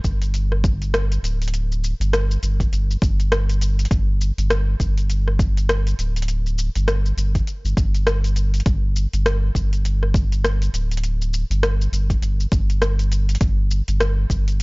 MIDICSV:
0, 0, Header, 1, 3, 480
1, 0, Start_track
1, 0, Tempo, 594059
1, 1236, Time_signature, 4, 2, 24, 8
1, 11819, End_track
2, 0, Start_track
2, 0, Title_t, "Sub bass"
2, 0, Program_c, 0, 38
2, 34, Note_on_c, 0, 31, 79
2, 960, Note_off_c, 0, 31, 0
2, 994, Note_on_c, 0, 26, 88
2, 1566, Note_off_c, 0, 26, 0
2, 1619, Note_on_c, 0, 31, 108
2, 1921, Note_off_c, 0, 31, 0
2, 1963, Note_on_c, 0, 31, 83
2, 2155, Note_off_c, 0, 31, 0
2, 2203, Note_on_c, 0, 31, 90
2, 2395, Note_off_c, 0, 31, 0
2, 2441, Note_on_c, 0, 31, 95
2, 3123, Note_off_c, 0, 31, 0
2, 3158, Note_on_c, 0, 31, 105
2, 3488, Note_off_c, 0, 31, 0
2, 3540, Note_on_c, 0, 31, 104
2, 3842, Note_off_c, 0, 31, 0
2, 3878, Note_on_c, 0, 31, 83
2, 4801, Note_off_c, 0, 31, 0
2, 4840, Note_on_c, 0, 26, 86
2, 5409, Note_off_c, 0, 26, 0
2, 5461, Note_on_c, 0, 31, 108
2, 5762, Note_off_c, 0, 31, 0
2, 5796, Note_on_c, 0, 31, 83
2, 5992, Note_off_c, 0, 31, 0
2, 6180, Note_on_c, 0, 31, 105
2, 6255, Note_off_c, 0, 31, 0
2, 6278, Note_on_c, 0, 31, 85
2, 6962, Note_off_c, 0, 31, 0
2, 6996, Note_on_c, 0, 31, 109
2, 7327, Note_off_c, 0, 31, 0
2, 7381, Note_on_c, 0, 31, 109
2, 7682, Note_off_c, 0, 31, 0
2, 7716, Note_on_c, 0, 31, 86
2, 8641, Note_off_c, 0, 31, 0
2, 8675, Note_on_c, 0, 26, 86
2, 9246, Note_off_c, 0, 26, 0
2, 9297, Note_on_c, 0, 31, 113
2, 9600, Note_off_c, 0, 31, 0
2, 9635, Note_on_c, 0, 31, 83
2, 9831, Note_off_c, 0, 31, 0
2, 9874, Note_on_c, 0, 31, 84
2, 10071, Note_off_c, 0, 31, 0
2, 10116, Note_on_c, 0, 31, 91
2, 10801, Note_off_c, 0, 31, 0
2, 10834, Note_on_c, 0, 31, 107
2, 11166, Note_off_c, 0, 31, 0
2, 11218, Note_on_c, 0, 31, 106
2, 11521, Note_off_c, 0, 31, 0
2, 11553, Note_on_c, 0, 31, 84
2, 11819, Note_off_c, 0, 31, 0
2, 11819, End_track
3, 0, Start_track
3, 0, Title_t, "Drums"
3, 36, Note_on_c, 9, 36, 61
3, 36, Note_on_c, 9, 82, 77
3, 117, Note_off_c, 9, 36, 0
3, 117, Note_off_c, 9, 82, 0
3, 175, Note_on_c, 9, 42, 45
3, 179, Note_on_c, 9, 82, 34
3, 256, Note_off_c, 9, 42, 0
3, 259, Note_off_c, 9, 82, 0
3, 274, Note_on_c, 9, 42, 58
3, 278, Note_on_c, 9, 82, 44
3, 355, Note_off_c, 9, 42, 0
3, 359, Note_off_c, 9, 82, 0
3, 419, Note_on_c, 9, 37, 35
3, 500, Note_off_c, 9, 37, 0
3, 517, Note_on_c, 9, 36, 105
3, 521, Note_on_c, 9, 82, 79
3, 598, Note_off_c, 9, 36, 0
3, 602, Note_off_c, 9, 82, 0
3, 661, Note_on_c, 9, 42, 44
3, 664, Note_on_c, 9, 82, 32
3, 741, Note_off_c, 9, 42, 0
3, 745, Note_off_c, 9, 82, 0
3, 759, Note_on_c, 9, 37, 107
3, 759, Note_on_c, 9, 42, 57
3, 763, Note_on_c, 9, 82, 44
3, 840, Note_off_c, 9, 37, 0
3, 840, Note_off_c, 9, 42, 0
3, 844, Note_off_c, 9, 82, 0
3, 903, Note_on_c, 9, 42, 34
3, 907, Note_on_c, 9, 82, 33
3, 984, Note_off_c, 9, 42, 0
3, 988, Note_off_c, 9, 82, 0
3, 1003, Note_on_c, 9, 42, 45
3, 1007, Note_on_c, 9, 82, 72
3, 1084, Note_off_c, 9, 42, 0
3, 1088, Note_off_c, 9, 82, 0
3, 1145, Note_on_c, 9, 42, 42
3, 1149, Note_on_c, 9, 82, 34
3, 1193, Note_off_c, 9, 42, 0
3, 1193, Note_on_c, 9, 42, 58
3, 1230, Note_off_c, 9, 82, 0
3, 1242, Note_off_c, 9, 42, 0
3, 1242, Note_on_c, 9, 42, 58
3, 1246, Note_on_c, 9, 82, 46
3, 1323, Note_off_c, 9, 42, 0
3, 1327, Note_off_c, 9, 82, 0
3, 1390, Note_on_c, 9, 82, 33
3, 1471, Note_off_c, 9, 82, 0
3, 1487, Note_on_c, 9, 82, 80
3, 1568, Note_off_c, 9, 82, 0
3, 1625, Note_on_c, 9, 42, 42
3, 1629, Note_on_c, 9, 82, 33
3, 1706, Note_off_c, 9, 42, 0
3, 1709, Note_off_c, 9, 82, 0
3, 1724, Note_on_c, 9, 37, 108
3, 1724, Note_on_c, 9, 42, 58
3, 1728, Note_on_c, 9, 82, 46
3, 1805, Note_off_c, 9, 37, 0
3, 1805, Note_off_c, 9, 42, 0
3, 1809, Note_off_c, 9, 82, 0
3, 1868, Note_on_c, 9, 82, 35
3, 1948, Note_off_c, 9, 82, 0
3, 1962, Note_on_c, 9, 42, 29
3, 1966, Note_on_c, 9, 82, 80
3, 2043, Note_off_c, 9, 42, 0
3, 2047, Note_off_c, 9, 82, 0
3, 2102, Note_on_c, 9, 36, 63
3, 2106, Note_on_c, 9, 42, 46
3, 2109, Note_on_c, 9, 82, 35
3, 2182, Note_off_c, 9, 36, 0
3, 2186, Note_off_c, 9, 42, 0
3, 2190, Note_off_c, 9, 82, 0
3, 2204, Note_on_c, 9, 42, 58
3, 2208, Note_on_c, 9, 82, 49
3, 2285, Note_off_c, 9, 42, 0
3, 2289, Note_off_c, 9, 82, 0
3, 2350, Note_on_c, 9, 82, 33
3, 2430, Note_off_c, 9, 82, 0
3, 2440, Note_on_c, 9, 36, 108
3, 2443, Note_on_c, 9, 42, 31
3, 2447, Note_on_c, 9, 82, 82
3, 2521, Note_off_c, 9, 36, 0
3, 2524, Note_off_c, 9, 42, 0
3, 2528, Note_off_c, 9, 82, 0
3, 2583, Note_on_c, 9, 42, 43
3, 2587, Note_on_c, 9, 82, 33
3, 2664, Note_off_c, 9, 42, 0
3, 2668, Note_off_c, 9, 82, 0
3, 2682, Note_on_c, 9, 37, 103
3, 2682, Note_on_c, 9, 42, 55
3, 2685, Note_on_c, 9, 82, 46
3, 2762, Note_off_c, 9, 37, 0
3, 2762, Note_off_c, 9, 42, 0
3, 2766, Note_off_c, 9, 82, 0
3, 2824, Note_on_c, 9, 42, 32
3, 2828, Note_on_c, 9, 82, 33
3, 2905, Note_off_c, 9, 42, 0
3, 2908, Note_off_c, 9, 82, 0
3, 2920, Note_on_c, 9, 42, 41
3, 2924, Note_on_c, 9, 82, 77
3, 3001, Note_off_c, 9, 42, 0
3, 3005, Note_off_c, 9, 82, 0
3, 3063, Note_on_c, 9, 42, 41
3, 3067, Note_on_c, 9, 82, 34
3, 3112, Note_off_c, 9, 42, 0
3, 3112, Note_on_c, 9, 42, 54
3, 3148, Note_off_c, 9, 82, 0
3, 3159, Note_on_c, 9, 36, 114
3, 3162, Note_off_c, 9, 42, 0
3, 3162, Note_on_c, 9, 42, 58
3, 3166, Note_on_c, 9, 82, 48
3, 3239, Note_off_c, 9, 36, 0
3, 3242, Note_off_c, 9, 42, 0
3, 3246, Note_off_c, 9, 82, 0
3, 3403, Note_on_c, 9, 82, 81
3, 3484, Note_off_c, 9, 82, 0
3, 3542, Note_on_c, 9, 42, 40
3, 3546, Note_on_c, 9, 82, 34
3, 3623, Note_off_c, 9, 42, 0
3, 3627, Note_off_c, 9, 82, 0
3, 3639, Note_on_c, 9, 37, 108
3, 3639, Note_on_c, 9, 42, 54
3, 3643, Note_on_c, 9, 82, 50
3, 3720, Note_off_c, 9, 37, 0
3, 3720, Note_off_c, 9, 42, 0
3, 3724, Note_off_c, 9, 82, 0
3, 3878, Note_on_c, 9, 36, 62
3, 3882, Note_on_c, 9, 82, 82
3, 3959, Note_off_c, 9, 36, 0
3, 3963, Note_off_c, 9, 82, 0
3, 4021, Note_on_c, 9, 42, 44
3, 4024, Note_on_c, 9, 82, 34
3, 4101, Note_off_c, 9, 42, 0
3, 4105, Note_off_c, 9, 82, 0
3, 4118, Note_on_c, 9, 42, 54
3, 4122, Note_on_c, 9, 82, 47
3, 4199, Note_off_c, 9, 42, 0
3, 4203, Note_off_c, 9, 82, 0
3, 4263, Note_on_c, 9, 37, 33
3, 4344, Note_off_c, 9, 37, 0
3, 4357, Note_on_c, 9, 36, 103
3, 4363, Note_on_c, 9, 82, 82
3, 4438, Note_off_c, 9, 36, 0
3, 4443, Note_off_c, 9, 82, 0
3, 4504, Note_on_c, 9, 42, 42
3, 4508, Note_on_c, 9, 82, 34
3, 4585, Note_off_c, 9, 42, 0
3, 4588, Note_off_c, 9, 82, 0
3, 4600, Note_on_c, 9, 37, 99
3, 4600, Note_on_c, 9, 42, 54
3, 4604, Note_on_c, 9, 82, 46
3, 4681, Note_off_c, 9, 37, 0
3, 4681, Note_off_c, 9, 42, 0
3, 4685, Note_off_c, 9, 82, 0
3, 4742, Note_on_c, 9, 42, 30
3, 4746, Note_on_c, 9, 82, 36
3, 4823, Note_off_c, 9, 42, 0
3, 4826, Note_off_c, 9, 82, 0
3, 4839, Note_on_c, 9, 42, 43
3, 4843, Note_on_c, 9, 82, 74
3, 4920, Note_off_c, 9, 42, 0
3, 4924, Note_off_c, 9, 82, 0
3, 4980, Note_on_c, 9, 42, 39
3, 4984, Note_on_c, 9, 82, 33
3, 5028, Note_off_c, 9, 42, 0
3, 5028, Note_on_c, 9, 42, 56
3, 5065, Note_off_c, 9, 82, 0
3, 5077, Note_off_c, 9, 42, 0
3, 5077, Note_on_c, 9, 42, 57
3, 5080, Note_on_c, 9, 82, 50
3, 5157, Note_off_c, 9, 42, 0
3, 5161, Note_off_c, 9, 82, 0
3, 5223, Note_on_c, 9, 82, 32
3, 5304, Note_off_c, 9, 82, 0
3, 5321, Note_on_c, 9, 82, 78
3, 5402, Note_off_c, 9, 82, 0
3, 5458, Note_on_c, 9, 42, 43
3, 5462, Note_on_c, 9, 82, 33
3, 5539, Note_off_c, 9, 42, 0
3, 5543, Note_off_c, 9, 82, 0
3, 5558, Note_on_c, 9, 37, 100
3, 5558, Note_on_c, 9, 42, 55
3, 5561, Note_on_c, 9, 82, 48
3, 5638, Note_off_c, 9, 37, 0
3, 5638, Note_off_c, 9, 42, 0
3, 5642, Note_off_c, 9, 82, 0
3, 5703, Note_on_c, 9, 82, 31
3, 5784, Note_off_c, 9, 82, 0
3, 5799, Note_on_c, 9, 42, 28
3, 5803, Note_on_c, 9, 82, 81
3, 5880, Note_off_c, 9, 42, 0
3, 5884, Note_off_c, 9, 82, 0
3, 5940, Note_on_c, 9, 36, 60
3, 5942, Note_on_c, 9, 42, 44
3, 5946, Note_on_c, 9, 82, 33
3, 6021, Note_off_c, 9, 36, 0
3, 6023, Note_off_c, 9, 42, 0
3, 6026, Note_off_c, 9, 82, 0
3, 6039, Note_on_c, 9, 42, 54
3, 6043, Note_on_c, 9, 82, 45
3, 6120, Note_off_c, 9, 42, 0
3, 6124, Note_off_c, 9, 82, 0
3, 6183, Note_on_c, 9, 82, 37
3, 6264, Note_off_c, 9, 82, 0
3, 6278, Note_on_c, 9, 36, 107
3, 6279, Note_on_c, 9, 42, 30
3, 6283, Note_on_c, 9, 82, 79
3, 6359, Note_off_c, 9, 36, 0
3, 6360, Note_off_c, 9, 42, 0
3, 6364, Note_off_c, 9, 82, 0
3, 6420, Note_on_c, 9, 42, 45
3, 6424, Note_on_c, 9, 82, 34
3, 6501, Note_off_c, 9, 42, 0
3, 6505, Note_off_c, 9, 82, 0
3, 6518, Note_on_c, 9, 37, 99
3, 6518, Note_on_c, 9, 42, 52
3, 6522, Note_on_c, 9, 82, 48
3, 6599, Note_off_c, 9, 37, 0
3, 6599, Note_off_c, 9, 42, 0
3, 6603, Note_off_c, 9, 82, 0
3, 6660, Note_on_c, 9, 42, 32
3, 6664, Note_on_c, 9, 82, 35
3, 6741, Note_off_c, 9, 42, 0
3, 6745, Note_off_c, 9, 82, 0
3, 6756, Note_on_c, 9, 42, 38
3, 6759, Note_on_c, 9, 82, 75
3, 6836, Note_off_c, 9, 42, 0
3, 6840, Note_off_c, 9, 82, 0
3, 6899, Note_on_c, 9, 42, 39
3, 6903, Note_on_c, 9, 82, 37
3, 6949, Note_off_c, 9, 42, 0
3, 6949, Note_on_c, 9, 42, 48
3, 6984, Note_off_c, 9, 82, 0
3, 6997, Note_on_c, 9, 36, 114
3, 6999, Note_off_c, 9, 42, 0
3, 6999, Note_on_c, 9, 42, 54
3, 7003, Note_on_c, 9, 82, 47
3, 7078, Note_off_c, 9, 36, 0
3, 7080, Note_off_c, 9, 42, 0
3, 7083, Note_off_c, 9, 82, 0
3, 7241, Note_on_c, 9, 82, 82
3, 7322, Note_off_c, 9, 82, 0
3, 7381, Note_on_c, 9, 42, 43
3, 7385, Note_on_c, 9, 82, 33
3, 7462, Note_off_c, 9, 42, 0
3, 7465, Note_off_c, 9, 82, 0
3, 7481, Note_on_c, 9, 37, 99
3, 7481, Note_on_c, 9, 42, 56
3, 7485, Note_on_c, 9, 82, 49
3, 7562, Note_off_c, 9, 37, 0
3, 7562, Note_off_c, 9, 42, 0
3, 7566, Note_off_c, 9, 82, 0
3, 7717, Note_on_c, 9, 36, 60
3, 7722, Note_on_c, 9, 82, 78
3, 7797, Note_off_c, 9, 36, 0
3, 7803, Note_off_c, 9, 82, 0
3, 7861, Note_on_c, 9, 42, 42
3, 7864, Note_on_c, 9, 82, 33
3, 7941, Note_off_c, 9, 42, 0
3, 7945, Note_off_c, 9, 82, 0
3, 7960, Note_on_c, 9, 42, 54
3, 7964, Note_on_c, 9, 82, 48
3, 8041, Note_off_c, 9, 42, 0
3, 8045, Note_off_c, 9, 82, 0
3, 8102, Note_on_c, 9, 37, 32
3, 8183, Note_off_c, 9, 37, 0
3, 8196, Note_on_c, 9, 36, 103
3, 8202, Note_on_c, 9, 82, 79
3, 8276, Note_off_c, 9, 36, 0
3, 8283, Note_off_c, 9, 82, 0
3, 8341, Note_on_c, 9, 42, 42
3, 8345, Note_on_c, 9, 82, 31
3, 8422, Note_off_c, 9, 42, 0
3, 8426, Note_off_c, 9, 82, 0
3, 8440, Note_on_c, 9, 37, 95
3, 8440, Note_on_c, 9, 42, 55
3, 8444, Note_on_c, 9, 82, 48
3, 8521, Note_off_c, 9, 37, 0
3, 8521, Note_off_c, 9, 42, 0
3, 8524, Note_off_c, 9, 82, 0
3, 8580, Note_on_c, 9, 42, 31
3, 8584, Note_on_c, 9, 82, 33
3, 8661, Note_off_c, 9, 42, 0
3, 8665, Note_off_c, 9, 82, 0
3, 8678, Note_on_c, 9, 42, 42
3, 8682, Note_on_c, 9, 82, 69
3, 8759, Note_off_c, 9, 42, 0
3, 8763, Note_off_c, 9, 82, 0
3, 8819, Note_on_c, 9, 42, 39
3, 8823, Note_on_c, 9, 82, 33
3, 8867, Note_off_c, 9, 42, 0
3, 8867, Note_on_c, 9, 42, 54
3, 8904, Note_off_c, 9, 82, 0
3, 8917, Note_off_c, 9, 42, 0
3, 8917, Note_on_c, 9, 42, 57
3, 8921, Note_on_c, 9, 82, 44
3, 8998, Note_off_c, 9, 42, 0
3, 9002, Note_off_c, 9, 82, 0
3, 9063, Note_on_c, 9, 82, 30
3, 9144, Note_off_c, 9, 82, 0
3, 9160, Note_on_c, 9, 82, 75
3, 9241, Note_off_c, 9, 82, 0
3, 9300, Note_on_c, 9, 42, 45
3, 9304, Note_on_c, 9, 82, 32
3, 9381, Note_off_c, 9, 42, 0
3, 9385, Note_off_c, 9, 82, 0
3, 9398, Note_on_c, 9, 37, 104
3, 9398, Note_on_c, 9, 42, 60
3, 9402, Note_on_c, 9, 82, 45
3, 9479, Note_off_c, 9, 37, 0
3, 9479, Note_off_c, 9, 42, 0
3, 9483, Note_off_c, 9, 82, 0
3, 9546, Note_on_c, 9, 82, 29
3, 9627, Note_off_c, 9, 82, 0
3, 9640, Note_on_c, 9, 42, 30
3, 9643, Note_on_c, 9, 82, 75
3, 9720, Note_off_c, 9, 42, 0
3, 9724, Note_off_c, 9, 82, 0
3, 9777, Note_on_c, 9, 36, 61
3, 9780, Note_on_c, 9, 42, 46
3, 9783, Note_on_c, 9, 82, 30
3, 9858, Note_off_c, 9, 36, 0
3, 9860, Note_off_c, 9, 42, 0
3, 9864, Note_off_c, 9, 82, 0
3, 9878, Note_on_c, 9, 42, 57
3, 9881, Note_on_c, 9, 82, 46
3, 9958, Note_off_c, 9, 42, 0
3, 9962, Note_off_c, 9, 82, 0
3, 10021, Note_on_c, 9, 82, 33
3, 10102, Note_off_c, 9, 82, 0
3, 10115, Note_on_c, 9, 36, 105
3, 10116, Note_on_c, 9, 42, 30
3, 10120, Note_on_c, 9, 82, 81
3, 10196, Note_off_c, 9, 36, 0
3, 10197, Note_off_c, 9, 42, 0
3, 10201, Note_off_c, 9, 82, 0
3, 10260, Note_on_c, 9, 42, 46
3, 10264, Note_on_c, 9, 82, 30
3, 10341, Note_off_c, 9, 42, 0
3, 10345, Note_off_c, 9, 82, 0
3, 10356, Note_on_c, 9, 37, 91
3, 10356, Note_on_c, 9, 42, 55
3, 10360, Note_on_c, 9, 82, 43
3, 10437, Note_off_c, 9, 37, 0
3, 10437, Note_off_c, 9, 42, 0
3, 10441, Note_off_c, 9, 82, 0
3, 10498, Note_on_c, 9, 42, 31
3, 10502, Note_on_c, 9, 82, 30
3, 10579, Note_off_c, 9, 42, 0
3, 10583, Note_off_c, 9, 82, 0
3, 10599, Note_on_c, 9, 42, 42
3, 10602, Note_on_c, 9, 82, 71
3, 10679, Note_off_c, 9, 42, 0
3, 10683, Note_off_c, 9, 82, 0
3, 10738, Note_on_c, 9, 42, 42
3, 10742, Note_on_c, 9, 82, 35
3, 10786, Note_off_c, 9, 42, 0
3, 10786, Note_on_c, 9, 42, 58
3, 10823, Note_off_c, 9, 82, 0
3, 10834, Note_off_c, 9, 42, 0
3, 10834, Note_on_c, 9, 36, 110
3, 10834, Note_on_c, 9, 42, 63
3, 10838, Note_on_c, 9, 82, 46
3, 10915, Note_off_c, 9, 36, 0
3, 10915, Note_off_c, 9, 42, 0
3, 10918, Note_off_c, 9, 82, 0
3, 11077, Note_on_c, 9, 82, 72
3, 11158, Note_off_c, 9, 82, 0
3, 11216, Note_on_c, 9, 42, 45
3, 11220, Note_on_c, 9, 82, 32
3, 11296, Note_off_c, 9, 42, 0
3, 11300, Note_off_c, 9, 82, 0
3, 11316, Note_on_c, 9, 37, 104
3, 11316, Note_on_c, 9, 42, 57
3, 11320, Note_on_c, 9, 82, 44
3, 11397, Note_off_c, 9, 37, 0
3, 11397, Note_off_c, 9, 42, 0
3, 11400, Note_off_c, 9, 82, 0
3, 11554, Note_on_c, 9, 36, 57
3, 11560, Note_on_c, 9, 82, 71
3, 11635, Note_off_c, 9, 36, 0
3, 11641, Note_off_c, 9, 82, 0
3, 11698, Note_on_c, 9, 42, 45
3, 11702, Note_on_c, 9, 82, 32
3, 11779, Note_off_c, 9, 42, 0
3, 11783, Note_off_c, 9, 82, 0
3, 11819, End_track
0, 0, End_of_file